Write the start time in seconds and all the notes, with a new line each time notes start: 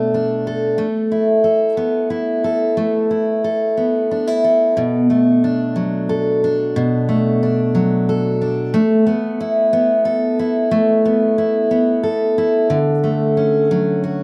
Already playing: B2 A3 D4 A4
0.14 D4
0.47 A4
0.78 A3
1.12 E4
1.44 A4
1.77 B3
2.10 E4
2.44 A4
2.77 A3
3.11 E4
3.44 A4
3.77 B3
4.11 D4
4.27 E4
4.44 A4
4.77 B2
5.10 A3
5.44 D4
5.76 F#3
6.09 A4
6.44 D4
6.76 B2
7.09 A3
7.43 D4
7.75 F#3
8.09 A4
8.41 D4
8.74 A3
9.07 B3
9.40 E4
9.73 B3
10.05 A4
10.39 E4
10.71 A3
11.05 B3
11.38 E4
11.71 B3
12.03 A4
12.38 E4
12.70 D3
13.04 A3
13.37 C#4
13.71 F#3
14.04 F#4